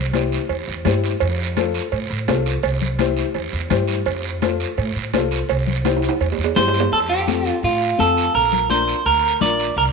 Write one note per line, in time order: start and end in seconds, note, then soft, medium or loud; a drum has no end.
0.00 0.36 C2 medium
0.14 0.39 E4 medium
0.14 0.39 G4 medium
0.14 0.39 C5 medium
0.14 cowbell medium
0.14 high conga medium
0.14 short guiro medium
0.32 short guiro medium
0.49 0.64 E2 medium
0.49 cowbell medium
0.49 high conga soft
0.49 long guiro medium
0.68 0.82 E2 medium
0.85 1.14 G2 medium
0.85 1.11 E4 medium
0.85 1.11 G4 medium
0.85 1.11 C5 medium
0.85 cowbell medium
0.85 high conga medium
0.85 low conga medium
0.85 low timbale medium
0.85 short guiro medium
1.04 short guiro medium
1.20 1.78 F2 loud
1.20 cowbell loud
1.20 high conga soft
1.20 long guiro medium
1.57 1.82 F4 medium
1.57 1.82 A4 medium
1.57 1.82 C5 medium
1.57 cowbell medium
1.57 high conga medium
1.57 short guiro medium
1.74 short guiro medium
1.92 2.07 A2 medium
1.92 cowbell medium
1.92 high conga soft
1.92 long guiro medium
2.10 2.25 A2 medium
2.28 2.57 C2 loud
2.28 2.53 F4 medium
2.28 2.53 A4 medium
2.28 2.53 C5 medium
2.28 cowbell medium
2.28 high conga medium
2.28 low timbale medium
2.28 short guiro medium
2.46 short guiro medium
2.63 3.21 C2 medium
2.63 cowbell loud
2.63 high conga soft
2.63 long guiro medium
2.82 low conga medium
2.99 3.24 E4 medium
2.99 3.25 G4 medium
2.99 3.25 C5 medium
2.99 cowbell medium
2.99 high conga medium
2.99 short guiro medium
3.17 short guiro medium
3.34 3.49 E2 medium
3.34 cowbell medium
3.34 high conga soft
3.34 long guiro medium
3.53 3.67 E2 medium
3.70 3.99 G2 loud
3.70 3.96 E4 medium
3.70 3.96 G4 medium
3.70 3.96 C5 loud
3.70 cowbell medium
3.70 high conga medium
3.70 low conga medium
3.70 short guiro medium
3.87 short guiro medium
4.06 4.63 F2 loud
4.06 cowbell loud
4.06 high conga soft
4.06 long guiro medium
4.42 4.67 F4 medium
4.42 4.67 A4 medium
4.42 4.68 C5 medium
4.42 cowbell medium
4.42 high conga medium
4.42 short guiro medium
4.60 short guiro medium
4.78 4.92 A2 medium
4.78 cowbell medium
4.78 high conga soft
4.78 long guiro medium
4.96 5.10 A2 medium
5.13 5.42 C2 medium
5.13 5.38 F4 medium
5.13 5.39 A4 medium
5.13 5.39 C5 medium
5.13 cowbell medium
5.13 high conga medium
5.13 low timbale medium
5.13 short guiro medium
5.31 short guiro medium
5.49 6.06 C2 loud
5.49 cowbell loud
5.49 high conga soft
5.49 long guiro medium
5.67 low conga medium
5.85 6.10 E4 medium
5.85 6.10 G4 medium
5.85 6.10 C5 medium
5.85 cowbell medium
5.85 high conga medium
5.85 high timbale medium
5.85 short guiro medium
5.97 high timbale medium
6.02 short guiro medium
6.09 high timbale loud
6.20 6.35 E2 medium
6.20 cowbell medium
6.20 high conga soft
6.20 long guiro medium
6.32 low timbale medium
6.38 6.52 E2 medium
6.44 low timbale medium
6.56 6.84 G2 medium
6.56 6.81 E4 medium
6.56 6.81 G4 medium
6.56 6.89 C5 medium
6.56 6.82 C5 medium
6.56 cowbell medium
6.56 high conga medium
6.56 low conga medium
6.56 low timbale medium
6.56 short guiro medium
6.68 low timbale medium
6.74 short guiro medium
6.80 low timbale loud
6.92 7.49 F2 medium
6.92 6.98 A4 medium
6.92 high conga soft
6.92 long guiro medium
7.09 7.59 G4 medium
7.27 7.52 C4 medium
7.27 7.52 F4 medium
7.27 7.53 A4 medium
7.27 high conga medium
7.27 short guiro medium
7.45 short guiro medium
7.63 7.92 A2 medium
7.63 8.00 F4 medium
7.63 high conga soft
7.63 long guiro medium
7.98 8.27 F2 medium
7.98 8.23 C4 medium
7.98 8.23 F4 medium
7.98 8.24 A4 medium
7.98 8.32 A4 medium
7.98 high conga medium
7.98 short guiro medium
8.17 short guiro medium
8.34 8.91 A#1 medium
8.34 8.70 A#4 loud
8.34 high conga soft
8.34 long guiro medium
8.53 low conga medium
8.69 8.94 D4 medium
8.69 8.95 F4 medium
8.69 8.95 A#4 medium
8.69 9.03 C5 loud
8.69 high conga medium
8.69 short guiro medium
8.88 short guiro medium
9.05 9.34 D2 medium
9.05 9.41 A#4 loud
9.05 high conga soft
9.05 long guiro medium
9.41 9.69 A#1 medium
9.41 9.66 D4 medium
9.41 9.66 F4 medium
9.41 9.67 A#4 medium
9.41 9.75 D5 loud
9.41 high conga medium
9.41 low conga medium
9.41 short guiro medium
9.59 short guiro medium
9.76 9.92 C2 medium
9.76 9.83 A#4 medium
9.76 high conga soft
9.76 long guiro medium